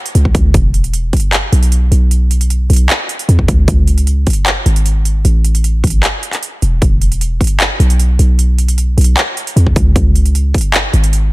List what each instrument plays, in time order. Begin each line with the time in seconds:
0.06 closed hi-hat
0.15 808-style bass C#2, closed hi-hat
0.25 kick
0.35 808-style bass C#2, kick, closed hi-hat
0.54 808-style bass E1, kick, closed hi-hat
0.74 closed hi-hat
0.84 closed hi-hat
0.94 closed hi-hat
1.13 kick, closed hi-hat
1.17 closed hi-hat
1.20 closed hi-hat
1.33 clap, closed hi-hat
1.52 808-style bass B1, closed hi-hat
1.63 closed hi-hat
1.72 closed hi-hat
1.92 808-style bass B1, closed hi-hat
2.11 closed hi-hat
2.31 closed hi-hat
2.41 closed hi-hat
2.50 closed hi-hat
2.70 808-style bass B1, closed hi-hat
2.73 closed hi-hat
2.76 closed hi-hat
2.90 clap, closed hi-hat
3.09 closed hi-hat
3.19 closed hi-hat
3.29 808-style bass E2, closed hi-hat
3.39 kick
3.48 808-style bass C#2, kick, closed hi-hat
3.68 808-style bass C#2, kick, closed hi-hat
3.87 closed hi-hat
3.98 closed hi-hat
4.07 closed hi-hat
4.27 kick, closed hi-hat
4.30 closed hi-hat
4.33 closed hi-hat
4.46 clap, closed hi-hat
4.66 808-style bass G#1, closed hi-hat
4.76 closed hi-hat
4.86 closed hi-hat
5.05 closed hi-hat
5.25 808-style bass A1, closed hi-hat
5.45 closed hi-hat
5.55 closed hi-hat
5.64 closed hi-hat
5.84 808-style bass A1, kick, closed hi-hat
5.87 closed hi-hat
5.90 closed hi-hat
6.03 clap, closed hi-hat
6.23 closed hi-hat
6.33 clap, closed hi-hat
6.43 closed hi-hat
6.62 808-style bass E1, closed hi-hat
6.82 808-style bass E1, kick, closed hi-hat
7.02 closed hi-hat
7.12 closed hi-hat
7.21 closed hi-hat
7.41 kick, closed hi-hat
7.44 closed hi-hat
7.47 closed hi-hat
7.60 clap, closed hi-hat
7.80 808-style bass B1, closed hi-hat
7.90 closed hi-hat
8.00 closed hi-hat
8.19 808-style bass B1, closed hi-hat
8.39 closed hi-hat
8.58 closed hi-hat
8.68 closed hi-hat
8.78 closed hi-hat
8.97 808-style bass B1, closed hi-hat
9.01 closed hi-hat
9.04 closed hi-hat
9.17 clap, closed hi-hat
9.37 closed hi-hat
9.47 closed hi-hat
9.56 808-style bass E2, closed hi-hat
9.67 kick
9.76 808-style bass C#2, kick, closed hi-hat
9.96 808-style bass C#2, kick, closed hi-hat
10.15 closed hi-hat
10.26 closed hi-hat
10.35 closed hi-hat
10.54 kick, closed hi-hat
10.58 closed hi-hat
10.61 closed hi-hat
10.74 clap, closed hi-hat
10.93 808-style bass G#1, closed hi-hat
11.04 closed hi-hat
11.13 closed hi-hat